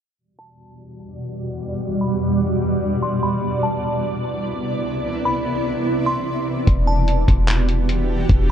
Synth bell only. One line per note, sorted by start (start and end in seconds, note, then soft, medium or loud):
0.39 0.58 A5 medium
2.01 2.20 B5 medium
3.02 3.22 C6 medium
3.23 3.42 B5 medium
3.63 3.82 A5 medium
5.25 5.45 B5 medium
6.06 6.26 C6 medium
6.87 7.07 A5 medium